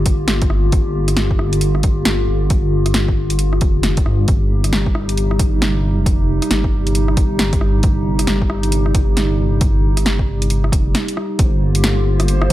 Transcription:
Already playing: G1 D3 A#3 F4 G4
0.06 kick, closed hi-hat
0.28 snare, closed hi-hat
0.42 kick, closed hi-hat
0.50 cross-stick
0.72 kick, closed hi-hat
1.08 cross-stick, closed hi-hat
1.17 G1, snare, closed hi-hat
1.31 kick
1.39 cross-stick
1.53 closed hi-hat
1.61 closed hi-hat
1.75 cross-stick
1.83 G1, kick, closed hi-hat
2.05 snare, closed hi-hat
2.28 G1
2.50 kick, closed hi-hat
2.86 cross-stick, closed hi-hat
2.94 G1, snare, closed hi-hat
3.08 kick
3.30 closed hi-hat
3.39 closed hi-hat
3.53 cross-stick
3.61 F1, kick, closed hi-hat
3.83 snare, closed hi-hat
3.97 kick, closed hi-hat
4.06 G2, cross-stick
4.28 G1 C3 G3 D#4 G4, kick, closed hi-hat
4.64 cross-stick, closed hi-hat
4.73 snare, closed hi-hat
4.86 kick
4.95 cross-stick
5.09 closed hi-hat
5.17 closed hi-hat
5.31 cross-stick
5.39 kick, closed hi-hat
5.62 snare, closed hi-hat
5.98 F1
6.06 kick, closed hi-hat
6.42 cross-stick, closed hi-hat
6.50 G1, snare, closed hi-hat
6.64 kick
6.87 closed hi-hat
6.95 closed hi-hat
7.08 cross-stick
7.17 kick, closed hi-hat
7.39 snare, closed hi-hat
7.53 kick, closed hi-hat
7.61 cross-stick
7.83 kick, closed hi-hat
8.19 cross-stick, closed hi-hat
8.27 G1, snare, closed hi-hat
8.42 kick
8.50 cross-stick
8.63 closed hi-hat
8.72 closed hi-hat
8.86 cross-stick
8.95 G1, kick, closed hi-hat
9.17 snare, closed hi-hat
9.39 G1
9.61 kick, closed hi-hat
9.97 cross-stick, closed hi-hat
10.06 G1, snare, closed hi-hat
10.19 kick
10.42 closed hi-hat
10.50 closed hi-hat
10.64 cross-stick
10.72 F1, kick, closed hi-hat
10.95 snare, closed hi-hat
11.08 closed hi-hat
11.17 cross-stick
11.39 G1 D3 A#3 F4 G4 C5, kick, closed hi-hat
11.75 closed hi-hat
11.84 snare, closed hi-hat
12.20 cross-stick, closed hi-hat
12.28 closed hi-hat
12.42 cross-stick

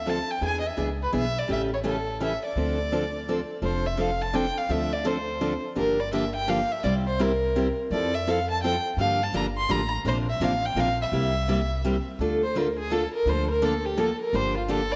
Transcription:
Already playing: D2 E5
0.06 D3 F3 C4 D4 A4 A5
0.31 G5
0.41 E2 E3 B3 D4 G#4
0.46 G#5
0.60 D#5
0.67 E5
0.77 C#2 E3 B3 D4 G#4
1.03 B4
1.12 B1 E3 B3 D4 G#4 E5
1.39 D5
1.48 A1 C#3 E3 A3 C#4 G4
1.52 E5
1.74 C#5
1.83 C#3 E3 A3 C#4 G4
1.88 A4
2.20 C#3 E3 A3 C#4 G4 E5
2.46 D5
2.56 D2 D3 F3 C4 D4 A4
2.92 D3 F3 C4 D4 A4
3.28 D3 F3 C4 D4 A4
3.62 F1 F3 C4 D4 A4 C5
3.87 E5
3.97 F3 C4 D4 A4 F5
4.22 A5
4.33 F3 C4 D4 A4 G5
4.58 F5
4.69 D2 D3 F3 C4 D4 A4 E5
4.93 D5
5.04 D3 F3 C4 D4 A4 C5
5.41 D3 F3 C4 D4 A4
5.75 G1 D3 F3 A#3 D4 G4 A#4
6.00 D5
6.13 D3 F3 A#3 D4 G4 E5
6.36 G5
6.47 D3 F3 A#3 D4 G4 F5
6.72 E5
6.83 C2 C3 G3 C4 E4 G4 D5
7.08 C5
7.19 C3 G3 C4 E4 G4 A#4
7.56 C3 G3 C4 E4 G4
7.91 F2 F3 C4 E4 A4 D5
8.15 E5
8.27 F3 C4 E4 A4 F5
8.51 A5
8.63 F3 C4 E4 A4 G5
8.97 G2 D3 F3 A#3 D4 G4 F5
9.23 A5
9.33 G1 D3 F3 A#3 D4 G4
9.37 A#5
9.58 C6
9.69 A1 D3 F3 A#3 D4 G4 A#5
10.05 A#1 C3 F3 A#3 D4 A#4 C5
10.30 E5
10.40 A1 C3 F3 A#3 D4 A#4 F5
10.66 G5
10.75 A#1 C3 F3 A#3 D4 A#4
10.80 F5
11.02 E5
11.12 C2 C3 G3 A#3 E4 G4
11.48 C3 G3 A#3 E4 G4
11.84 C3 G3 A#3 E4 G4
12.19 D2 D3 A3 D4 F4 A4
12.43 C5
12.55 D3 A3 D4 F4 A4 A#4
12.79 G#4
12.90 D3 A3 D4 F4 A4
13.14 A#4
13.26 D2 D3 F3 A#3 D4 A4 C5
13.51 A#4
13.62 D3 F3 A#3 D4 A4
13.85 G4
13.97 D3 F3 A#3 D4 A4
14.21 A#4
14.33 G1 D3 F3 A#3 D4 G4 C5
14.58 F4
14.68 D3 F3 A#3 D4 G4 A4
14.92 D5

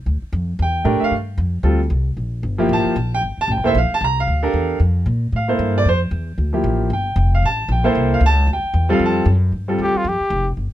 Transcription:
0.06 D2
0.22 muted upright bass stroke
0.33 F2
0.59 E2 G5
0.85 A2 A3 D4 G4 A#4
1.01 F5, muted upright bass stroke
1.11 G2
1.38 F2
1.63 D2 G3 C4 F4 A4
1.90 C2
2.17 A#1
2.43 G1
2.58 F3 A#3 E4 G4
2.69 A1
2.73 A5
2.86 muted upright bass stroke
2.96 A#1
3.15 G5
3.22 G1
3.37 A5, muted upright bass stroke
3.48 A1 G5
3.56 G1
3.64 F1 A#3 E4 A4 C5 E5
3.75 A#1 F5
3.91 A5, muted upright bass stroke
4.01 C2 A#5
4.20 F5
4.27 D2
4.43 D4 G4 A4 A#4
4.53 E2
4.80 F2
5.06 A#2
5.32 A2 F5
5.48 A#3 E4 A4 C5
5.59 G2
5.78 D5
5.85 F2 C5
6.11 E2
6.38 D2
6.53 F3 A#3 E4 G4
6.64 A1
6.90 G1 G5
7.16 F1
7.35 F5
7.42 A1 A5
7.68 A#1 G5
7.84 A#3 E4 A4 C5
7.95 C2
8.14 F5
8.21 C#2
8.26 A5
8.47 D2
8.53 G5
8.64 muted upright bass stroke
8.74 E2
8.89 G3 C4 F4 A4 F5
8.99 F2
9.06 A5
9.26 F#2
9.52 G2
9.68 G3 C4 F4 A4
9.78 D2 G4
9.94 F4, muted upright bass stroke
10.04 F2 G4
10.20 muted upright bass stroke
10.30 F1
10.57 G1

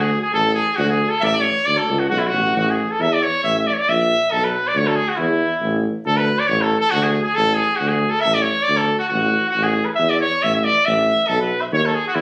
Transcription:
Already playing: D2
0.00 G#4
0.22 G#4
0.34 A1 A4
0.54 G#4
0.76 D2 F#4
0.89 G#4
1.09 A4
1.21 A1 D5 E5
1.25 E5
1.33 D5
1.41 C#5
1.66 D2 D5
1.77 A4
1.89 C#2
1.99 F#4
2.09 B1 F#4
2.19 E4
2.27 F#4
2.34 A1
2.56 A1 F#4
2.70 G#4
2.91 A4
2.99 E2 E5
3.13 D5
3.23 C#5
3.43 A1 E5
3.59 E5
3.67 D5
3.73 C#5
3.79 D5
3.88 A#1 E5
4.31 B1 A4
4.44 B4
4.67 D5
4.75 D2 C#5
4.87 A4
4.95 G#4
5.08 F#4
5.17 E2 E4
5.62 A1
6.06 D2 A4
6.17 B4
6.39 D5
6.47 A1 C#5
6.62 A4
6.80 A4
6.91 D2 F#4
7.03 G#4
7.23 G#4
7.35 A1 A4
7.54 G#4
7.76 F#4
7.80 D2
7.88 G#4
8.10 A4
8.20 E5
8.25 A1
8.34 D5
8.42 C#5
8.63 D5
8.68 D2
8.77 A4
8.99 F#4
9.08 A1 F#4
9.49 F#4
9.56 A1
9.63 G#4
9.85 B4
9.95 E5
9.99 E2
10.10 D5
10.21 C#5
10.43 A1 E5
10.55 E5
10.64 D5
10.85 A1 E5
11.27 B1 A4
11.41 B4
11.61 E5
11.72 D#2 C#5
11.86 A4
11.95 G#4
12.08 F#4
12.15 E2 E4

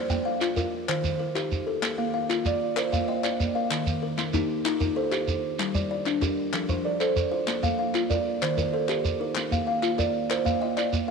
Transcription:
Already playing: A#3 C5
0.10 A#3 G5, clap, shekere
0.25 F5
0.41 F4, clap, shekere
0.56 F4 A#4, clap, shekere
0.88 D#3 C5, clap, shekere
1.04 D#3, shekere
1.19 A#4
1.35 D#4 G4 A#4, clap, shekere
1.52 D#3, shekere
1.67 A4 A#4
1.82 A#3, clap, shekere
1.98 A#3 F5
2.14 F5
2.29 F4, clap, shekere
2.45 F4 D5, clap, shekere
2.77 A#4 C5, clap, shekere
2.92 A#3 F5, shekere
3.08 D#5 G5
3.23 D5, clap, shekere
3.40 A#3, shekere
3.55 A#4 F5
3.71 D#3, clap, shekere
3.87 D#3, shekere
4.02 A#4
4.18 A#3, clap, shekere
4.33 A#3 D#4 G4, clap, shekere
4.65 D#4 F4, clap, shekere
4.80 D#3 A#4, shekere
4.96 A4 C5
5.12 G4, clap, shekere
5.28 D#3, shekere
5.59 G3, clap, shekere
5.74 G3 D5, shekere
5.91 D5
6.06 D4, clap, shekere
6.22 D4 G4 A#4, clap, shekere
6.53 F3 A4, clap, shekere
6.69 F3 C5, shekere
6.85 A#4 D5
7.00 A4 C5, clap, shekere
7.16 F3, shekere
7.31 F4 C5
7.47 A#3, clap, shekere
7.63 A#3 F5, clap, shekere
7.79 F5
7.94 F4, clap, shekere
8.10 F4 A#4 D5, shekere
8.42 D#3 C5, clap, shekere
8.57 D#3 A#4, shekere
8.73 A4 C5
8.88 G4 A#4, clap, shekere
9.04 D#3, shekere
9.20 D#4 A#4
9.35 A#3, clap, shekere
9.51 A#3 F5, shekere
9.67 F5
9.83 F4, clap, shekere
9.98 F4 A#4 D5, clap, shekere
10.30 A#4 C5, clap, shekere
10.45 A#3 F5, shekere
10.61 D#5 G5
10.77 D5 F5, clap, shekere
10.93 A#3, shekere

